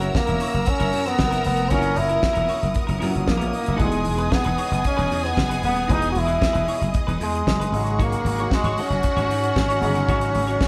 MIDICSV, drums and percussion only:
0, 0, Header, 1, 2, 480
1, 0, Start_track
1, 0, Tempo, 522648
1, 1577, Time_signature, 4, 2, 24, 8
1, 9808, End_track
2, 0, Start_track
2, 0, Title_t, "Drums"
2, 13, Note_on_c, 9, 42, 38
2, 105, Note_off_c, 9, 42, 0
2, 136, Note_on_c, 9, 36, 108
2, 137, Note_on_c, 9, 38, 94
2, 228, Note_off_c, 9, 36, 0
2, 229, Note_off_c, 9, 38, 0
2, 248, Note_on_c, 9, 42, 41
2, 339, Note_off_c, 9, 42, 0
2, 369, Note_on_c, 9, 46, 69
2, 460, Note_off_c, 9, 46, 0
2, 499, Note_on_c, 9, 42, 42
2, 591, Note_off_c, 9, 42, 0
2, 606, Note_on_c, 9, 42, 67
2, 619, Note_on_c, 9, 36, 106
2, 697, Note_off_c, 9, 42, 0
2, 711, Note_off_c, 9, 36, 0
2, 734, Note_on_c, 9, 42, 40
2, 825, Note_off_c, 9, 42, 0
2, 851, Note_on_c, 9, 46, 65
2, 943, Note_off_c, 9, 46, 0
2, 977, Note_on_c, 9, 42, 45
2, 979, Note_on_c, 9, 38, 36
2, 1069, Note_off_c, 9, 42, 0
2, 1071, Note_off_c, 9, 38, 0
2, 1090, Note_on_c, 9, 38, 111
2, 1095, Note_on_c, 9, 36, 101
2, 1182, Note_off_c, 9, 38, 0
2, 1187, Note_off_c, 9, 36, 0
2, 1215, Note_on_c, 9, 42, 52
2, 1307, Note_off_c, 9, 42, 0
2, 1326, Note_on_c, 9, 46, 53
2, 1417, Note_off_c, 9, 46, 0
2, 1441, Note_on_c, 9, 42, 42
2, 1533, Note_off_c, 9, 42, 0
2, 1565, Note_on_c, 9, 42, 54
2, 1572, Note_on_c, 9, 36, 96
2, 1657, Note_off_c, 9, 42, 0
2, 1664, Note_off_c, 9, 36, 0
2, 1676, Note_on_c, 9, 42, 44
2, 1768, Note_off_c, 9, 42, 0
2, 1802, Note_on_c, 9, 46, 59
2, 1894, Note_off_c, 9, 46, 0
2, 1923, Note_on_c, 9, 42, 45
2, 2014, Note_off_c, 9, 42, 0
2, 2047, Note_on_c, 9, 38, 95
2, 2048, Note_on_c, 9, 36, 100
2, 2139, Note_off_c, 9, 38, 0
2, 2140, Note_off_c, 9, 36, 0
2, 2161, Note_on_c, 9, 42, 41
2, 2252, Note_off_c, 9, 42, 0
2, 2282, Note_on_c, 9, 46, 74
2, 2374, Note_off_c, 9, 46, 0
2, 2416, Note_on_c, 9, 42, 47
2, 2508, Note_off_c, 9, 42, 0
2, 2520, Note_on_c, 9, 42, 56
2, 2532, Note_on_c, 9, 36, 97
2, 2612, Note_off_c, 9, 42, 0
2, 2624, Note_off_c, 9, 36, 0
2, 2651, Note_on_c, 9, 42, 41
2, 2743, Note_off_c, 9, 42, 0
2, 2771, Note_on_c, 9, 46, 64
2, 2863, Note_off_c, 9, 46, 0
2, 2893, Note_on_c, 9, 42, 45
2, 2985, Note_off_c, 9, 42, 0
2, 3008, Note_on_c, 9, 38, 116
2, 3010, Note_on_c, 9, 36, 98
2, 3100, Note_off_c, 9, 38, 0
2, 3102, Note_off_c, 9, 36, 0
2, 3135, Note_on_c, 9, 42, 46
2, 3227, Note_off_c, 9, 42, 0
2, 3244, Note_on_c, 9, 46, 51
2, 3336, Note_off_c, 9, 46, 0
2, 3364, Note_on_c, 9, 42, 46
2, 3456, Note_off_c, 9, 42, 0
2, 3485, Note_on_c, 9, 42, 50
2, 3488, Note_on_c, 9, 36, 92
2, 3576, Note_off_c, 9, 42, 0
2, 3580, Note_off_c, 9, 36, 0
2, 3597, Note_on_c, 9, 42, 50
2, 3689, Note_off_c, 9, 42, 0
2, 3717, Note_on_c, 9, 46, 59
2, 3808, Note_off_c, 9, 46, 0
2, 3843, Note_on_c, 9, 42, 41
2, 3935, Note_off_c, 9, 42, 0
2, 3966, Note_on_c, 9, 36, 102
2, 3968, Note_on_c, 9, 38, 103
2, 4058, Note_off_c, 9, 36, 0
2, 4060, Note_off_c, 9, 38, 0
2, 4079, Note_on_c, 9, 42, 42
2, 4171, Note_off_c, 9, 42, 0
2, 4207, Note_on_c, 9, 46, 62
2, 4299, Note_off_c, 9, 46, 0
2, 4346, Note_on_c, 9, 42, 47
2, 4438, Note_off_c, 9, 42, 0
2, 4449, Note_on_c, 9, 42, 58
2, 4455, Note_on_c, 9, 36, 90
2, 4541, Note_off_c, 9, 42, 0
2, 4547, Note_off_c, 9, 36, 0
2, 4582, Note_on_c, 9, 42, 37
2, 4673, Note_off_c, 9, 42, 0
2, 4699, Note_on_c, 9, 46, 63
2, 4790, Note_off_c, 9, 46, 0
2, 4820, Note_on_c, 9, 42, 49
2, 4822, Note_on_c, 9, 38, 38
2, 4912, Note_off_c, 9, 42, 0
2, 4914, Note_off_c, 9, 38, 0
2, 4934, Note_on_c, 9, 36, 103
2, 4938, Note_on_c, 9, 38, 119
2, 5026, Note_off_c, 9, 36, 0
2, 5030, Note_off_c, 9, 38, 0
2, 5061, Note_on_c, 9, 42, 55
2, 5153, Note_off_c, 9, 42, 0
2, 5171, Note_on_c, 9, 46, 52
2, 5263, Note_off_c, 9, 46, 0
2, 5294, Note_on_c, 9, 42, 44
2, 5386, Note_off_c, 9, 42, 0
2, 5415, Note_on_c, 9, 36, 99
2, 5416, Note_on_c, 9, 42, 57
2, 5507, Note_off_c, 9, 36, 0
2, 5508, Note_off_c, 9, 42, 0
2, 5529, Note_on_c, 9, 42, 48
2, 5621, Note_off_c, 9, 42, 0
2, 5649, Note_on_c, 9, 46, 58
2, 5740, Note_off_c, 9, 46, 0
2, 5772, Note_on_c, 9, 42, 43
2, 5864, Note_off_c, 9, 42, 0
2, 5893, Note_on_c, 9, 36, 109
2, 5897, Note_on_c, 9, 38, 103
2, 5985, Note_off_c, 9, 36, 0
2, 5989, Note_off_c, 9, 38, 0
2, 6010, Note_on_c, 9, 42, 37
2, 6102, Note_off_c, 9, 42, 0
2, 6136, Note_on_c, 9, 46, 69
2, 6228, Note_off_c, 9, 46, 0
2, 6266, Note_on_c, 9, 42, 43
2, 6358, Note_off_c, 9, 42, 0
2, 6373, Note_on_c, 9, 42, 62
2, 6380, Note_on_c, 9, 36, 113
2, 6464, Note_off_c, 9, 42, 0
2, 6472, Note_off_c, 9, 36, 0
2, 6506, Note_on_c, 9, 42, 38
2, 6598, Note_off_c, 9, 42, 0
2, 6621, Note_on_c, 9, 46, 65
2, 6713, Note_off_c, 9, 46, 0
2, 6752, Note_on_c, 9, 42, 50
2, 6844, Note_off_c, 9, 42, 0
2, 6861, Note_on_c, 9, 36, 93
2, 6867, Note_on_c, 9, 38, 110
2, 6953, Note_off_c, 9, 36, 0
2, 6959, Note_off_c, 9, 38, 0
2, 6993, Note_on_c, 9, 42, 55
2, 7085, Note_off_c, 9, 42, 0
2, 7105, Note_on_c, 9, 46, 51
2, 7197, Note_off_c, 9, 46, 0
2, 7226, Note_on_c, 9, 42, 44
2, 7318, Note_off_c, 9, 42, 0
2, 7343, Note_on_c, 9, 36, 99
2, 7348, Note_on_c, 9, 42, 48
2, 7435, Note_off_c, 9, 36, 0
2, 7440, Note_off_c, 9, 42, 0
2, 7460, Note_on_c, 9, 42, 49
2, 7552, Note_off_c, 9, 42, 0
2, 7585, Note_on_c, 9, 46, 60
2, 7677, Note_off_c, 9, 46, 0
2, 7703, Note_on_c, 9, 42, 42
2, 7795, Note_off_c, 9, 42, 0
2, 7818, Note_on_c, 9, 36, 107
2, 7822, Note_on_c, 9, 38, 97
2, 7910, Note_off_c, 9, 36, 0
2, 7914, Note_off_c, 9, 38, 0
2, 7937, Note_on_c, 9, 42, 41
2, 8029, Note_off_c, 9, 42, 0
2, 8060, Note_on_c, 9, 46, 60
2, 8152, Note_off_c, 9, 46, 0
2, 8194, Note_on_c, 9, 42, 41
2, 8286, Note_off_c, 9, 42, 0
2, 8293, Note_on_c, 9, 42, 60
2, 8303, Note_on_c, 9, 36, 95
2, 8385, Note_off_c, 9, 42, 0
2, 8395, Note_off_c, 9, 36, 0
2, 8429, Note_on_c, 9, 42, 41
2, 8520, Note_off_c, 9, 42, 0
2, 8547, Note_on_c, 9, 46, 66
2, 8639, Note_off_c, 9, 46, 0
2, 8666, Note_on_c, 9, 42, 51
2, 8758, Note_off_c, 9, 42, 0
2, 8781, Note_on_c, 9, 36, 106
2, 8785, Note_on_c, 9, 38, 113
2, 8873, Note_off_c, 9, 36, 0
2, 8876, Note_off_c, 9, 38, 0
2, 8908, Note_on_c, 9, 42, 48
2, 9000, Note_off_c, 9, 42, 0
2, 9022, Note_on_c, 9, 46, 54
2, 9114, Note_off_c, 9, 46, 0
2, 9141, Note_on_c, 9, 42, 44
2, 9233, Note_off_c, 9, 42, 0
2, 9262, Note_on_c, 9, 36, 103
2, 9263, Note_on_c, 9, 42, 56
2, 9354, Note_off_c, 9, 36, 0
2, 9355, Note_off_c, 9, 42, 0
2, 9379, Note_on_c, 9, 42, 45
2, 9471, Note_off_c, 9, 42, 0
2, 9501, Note_on_c, 9, 46, 60
2, 9593, Note_off_c, 9, 46, 0
2, 9625, Note_on_c, 9, 42, 44
2, 9716, Note_off_c, 9, 42, 0
2, 9741, Note_on_c, 9, 36, 110
2, 9745, Note_on_c, 9, 38, 90
2, 9808, Note_off_c, 9, 36, 0
2, 9808, Note_off_c, 9, 38, 0
2, 9808, End_track
0, 0, End_of_file